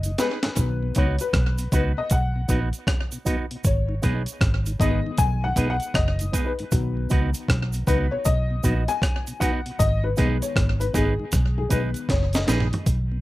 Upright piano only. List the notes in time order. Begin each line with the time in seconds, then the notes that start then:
Already playing: D#3 G#3 B3 D#5
0.19 B4
0.57 D#3 F#3 B3
0.97 C#5
1.21 B4
1.74 B4
1.98 D#5
2.12 F#5
3.66 C#5
4.79 D#3 G#3 B3 D#5
5.18 G#5
5.44 F#5
5.70 F#5
5.95 D#5
6.46 B4
6.71 D#3 F#3 B3
7.87 B4
8.11 C#5
8.25 D#5
8.88 G#5
9.40 F#5
9.79 D#5
10.04 B4
10.17 D#3 G#3 B3
10.42 C#5
10.80 B4
10.95 G#4
11.58 G#4
11.70 D#3 G#3 B3 B4
12.10 C#5
12.35 D#5